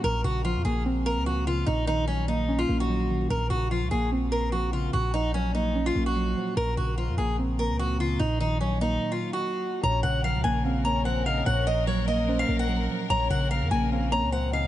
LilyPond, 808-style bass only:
\new Staff \with { instrumentName = "808-style bass" } { \clef bass \time 4/4 \key bes \minor \tempo 4 = 147 bes,,8 bes,,8. f,16 bes,,4~ bes,,16 des,4~ des,16 | bes,,2~ bes,,8 bes,,4. | bes,,8 bes,,8. des,16 bes,,2~ bes,,8 | bes,,2~ bes,,8 bes,,4 r8 |
bes,,8 bes,,8. f,16 bes,,4~ bes,,16 des,4~ des,16 | bes,,2 r2 | bes,,8 bes,,8. des,16 bes,,2~ bes,,8 | bes,,2~ bes,,8 bes,,4 r8 |
bes,,8 bes,,8. f,16 bes,,4~ bes,,16 des,4~ des,16 | }